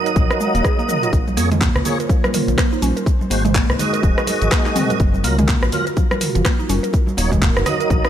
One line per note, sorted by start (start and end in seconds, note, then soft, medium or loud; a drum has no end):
0.00 1.12 F#3 medium
0.00 1.11 D#4 medium
0.00 1.12 D#4 medium
0.00 1.11 A#4 medium
0.00 1.12 D#5 loud
0.00 1.11 F5 medium
0.00 1.11 F#5 medium
0.06 0.15 A#4 medium
0.06 closed hi-hat medium
0.06 shaker soft
0.16 0.27 A#1 loud
0.16 0.29 F3 medium
0.16 kick loud
0.16 closed hi-hat soft
0.16 shaker medium
0.31 0.36 A#4 medium
0.31 cross-stick medium
0.31 shaker soft
0.40 0.53 G#3 medium
0.40 shaker medium
0.55 0.62 D#1 loud
0.55 0.64 A#3 medium
0.55 closed hi-hat medium
0.55 shaker soft
0.64 0.77 G#4 loud
0.64 kick loud
0.64 cross-stick medium
0.64 closed hi-hat soft
0.64 shaker medium
0.79 0.88 A#3 loud
0.79 shaker soft
0.89 1.02 A#4 medium
0.89 mid tom medium
0.89 shaker loud
1.03 1.12 F4 medium
1.03 closed hi-hat medium
1.03 shaker soft
1.12 1.38 A#1 loud
1.12 3.04 A#3 medium
1.12 3.04 F4 medium
1.12 4.96 C5 medium
1.12 3.04 C#5 medium
1.12 kick loud
1.12 closed hi-hat soft
1.12 muted conga medium
1.12 shaker medium
1.27 high conga loud
1.27 shaker soft
1.37 1.69 F2 loud
1.37 1.50 A#3 medium
1.37 1.45 A#3 medium
1.37 1.50 G#4 medium
1.37 1.50 C#5 medium
1.37 open hi-hat medium
1.37 shaker medium
1.51 1.60 G#3 loud
1.51 closed hi-hat medium
1.51 mid tom medium
1.51 muted conga soft
1.51 low conga loud
1.51 shaker soft
1.61 1.74 A#3 medium
1.61 kick loud
1.61 clap loud
1.61 closed hi-hat soft
1.61 shaker medium
1.76 1.83 C#2 loud
1.76 cross-stick medium
1.76 shaker soft
1.85 1.98 A#3 loud
1.85 1.98 G#4 medium
1.85 1.98 C#5 loud
1.85 open hi-hat medium
1.85 muted conga soft
1.85 low conga medium
1.85 shaker medium
2.00 2.09 A#4 medium
2.00 closed hi-hat medium
2.00 shaker soft
2.09 2.23 F3 medium
2.09 kick loud
2.09 closed hi-hat soft
2.09 shaker medium
2.24 2.29 A#4 medium
2.24 cross-stick medium
2.24 high conga loud
2.24 shaker soft
2.34 2.42 A#4 medium
2.34 mid tom medium
2.34 open hi-hat medium
2.34 muted conga soft
2.34 high conga medium
2.34 shaker medium
2.48 2.55 A#1 loud
2.48 2.57 F3 medium
2.48 closed hi-hat medium
2.48 low conga medium
2.48 shaker soft
2.58 2.71 A#3 medium
2.58 kick loud
2.58 cross-stick medium
2.58 clap loud
2.58 closed hi-hat soft
2.58 shaker medium
2.72 2.81 D#4 medium
2.72 muted conga soft
2.72 shaker soft
2.82 2.93 A#1 medium
2.82 2.95 C#4 loud
2.82 open hi-hat medium
2.82 high conga loud
2.82 shaker medium
2.97 3.05 A#4 medium
2.97 closed hi-hat medium
2.97 shaker soft
3.06 4.98 G#3 medium
3.06 4.98 D#4 medium
3.06 6.90 A#4 medium
3.06 kick loud
3.06 closed hi-hat soft
3.06 muted conga medium
3.06 shaker medium
3.21 high conga loud
3.21 shaker soft
3.30 3.63 G#1 loud
3.30 3.44 G#3 medium
3.30 3.38 A#3 medium
3.30 3.44 F#4 medium
3.30 3.44 C5 medium
3.30 open hi-hat medium
3.30 shaker medium
3.45 3.54 G#3 loud
3.45 closed hi-hat medium
3.45 mid tom medium
3.45 muted conga soft
3.45 low conga loud
3.45 shaker soft
3.55 kick loud
3.55 clap loud
3.55 closed hi-hat soft
3.55 shaker medium
3.69 3.76 C2 loud
3.69 cross-stick medium
3.69 shaker soft
3.79 4.99 G#3 loud
3.79 4.99 F#4 medium
3.79 4.99 D#5 loud
3.79 open hi-hat medium
3.79 muted conga soft
3.79 low conga medium
3.79 shaker medium
3.93 4.02 A#4 medium
3.93 closed hi-hat medium
3.93 shaker soft
4.03 4.14 D#1 loud
4.03 4.16 F3 medium
4.03 kick loud
4.03 closed hi-hat soft
4.03 shaker soft
4.18 4.23 A#4 medium
4.18 cross-stick medium
4.18 shaker soft
4.27 4.35 A#4 medium
4.27 open hi-hat medium
4.27 muted conga soft
4.27 high conga loud
4.27 shaker medium
4.42 4.49 G#1 loud
4.42 4.51 F3 medium
4.42 closed hi-hat medium
4.42 shaker soft
4.52 4.65 A#3 medium
4.52 kick loud
4.52 cross-stick medium
4.52 clap loud
4.52 closed hi-hat soft
4.52 shaker medium
4.66 4.75 D#4 medium
4.66 clap soft
4.66 muted conga soft
4.66 high conga medium
4.66 shaker soft
4.76 4.89 C4 loud
4.76 mid tom medium
4.76 open hi-hat medium
4.76 high conga medium
4.76 shaker medium
4.90 4.99 A#4 medium
4.90 closed hi-hat medium
4.90 high conga medium
4.90 shaker soft
5.00 5.26 F#1 loud
5.00 6.92 F4 medium
5.00 6.92 F#4 medium
5.00 kick loud
5.00 closed hi-hat soft
5.00 muted conga medium
5.00 shaker soft
5.14 high conga medium
5.14 shaker soft
5.24 5.57 C#2 medium
5.24 5.37 F#3 medium
5.24 5.32 A#3 medium
5.24 5.37 F4 medium
5.24 5.37 A#4 medium
5.24 open hi-hat medium
5.24 shaker medium
5.38 5.47 G#3 loud
5.38 closed hi-hat medium
5.38 mid tom medium
5.38 muted conga soft
5.38 low conga medium
5.38 shaker soft
5.48 kick loud
5.48 clap loud
5.48 closed hi-hat soft
5.48 shaker soft
5.63 5.70 A#1 loud
5.63 cross-stick medium
5.63 shaker soft
5.72 5.85 F#3 loud
5.72 5.85 F4 medium
5.72 5.85 A#4 loud
5.72 open hi-hat medium
5.72 muted conga medium
5.72 low conga medium
5.72 shaker medium
5.87 5.96 A#4 medium
5.87 closed hi-hat medium
5.87 shaker soft
5.97 6.10 F3 medium
5.97 kick loud
5.97 closed hi-hat soft
5.97 shaker soft
6.11 6.17 A#4 medium
6.11 cross-stick medium
6.11 high conga loud
6.11 shaker soft
6.21 6.29 A#4 medium
6.21 mid tom medium
6.21 open hi-hat medium
6.21 muted conga soft
6.21 high conga medium
6.21 shaker medium
6.35 6.43 F#1 loud
6.35 6.44 F3 medium
6.35 closed hi-hat medium
6.35 low conga medium
6.35 shaker soft
6.45 6.58 A#3 medium
6.45 kick loud
6.45 cross-stick medium
6.45 clap loud
6.45 closed hi-hat soft
6.45 shaker soft
6.59 6.68 D#4 medium
6.59 muted conga medium
6.59 shaker soft
6.69 6.80 F#1 medium
6.69 6.82 C#4 loud
6.69 open hi-hat medium
6.69 high conga loud
6.69 shaker medium
6.83 6.92 A#4 medium
6.83 closed hi-hat medium
6.83 shaker soft
6.93 8.10 D#4 medium
6.93 8.10 F#4 medium
6.93 8.10 A#4 medium
6.93 8.10 F5 medium
6.93 kick loud
6.93 closed hi-hat soft
6.93 muted conga medium
6.93 shaker medium
7.07 high conga medium
7.07 shaker soft
7.17 7.50 D#1 loud
7.17 7.31 F#3 medium
7.17 7.25 A#3 medium
7.17 7.31 D#4 medium
7.17 7.31 C#5 medium
7.17 open hi-hat medium
7.17 shaker medium
7.31 7.41 G#3 loud
7.31 kick medium
7.31 closed hi-hat medium
7.31 mid tom medium
7.31 muted conga soft
7.31 low conga loud
7.31 shaker soft
7.42 7.55 A#3 medium
7.42 kick loud
7.42 clap loud
7.42 closed hi-hat soft
7.42 shaker soft
7.56 7.64 F#1 loud
7.56 cross-stick medium
7.56 shaker soft
7.66 8.10 F#3 loud
7.66 8.10 D#4 medium
7.66 8.10 D#5 loud
7.66 cross-stick medium
7.66 open hi-hat loud
7.66 muted conga medium
7.66 low conga loud
7.66 shaker medium
7.80 7.89 A#4 medium
7.80 closed hi-hat medium
7.80 shaker soft
7.90 8.01 A#1 loud
7.90 8.03 F3 medium
7.90 kick loud
7.90 closed hi-hat soft
7.90 shaker medium
8.05 8.10 A#4 medium
8.05 cross-stick medium
8.05 shaker soft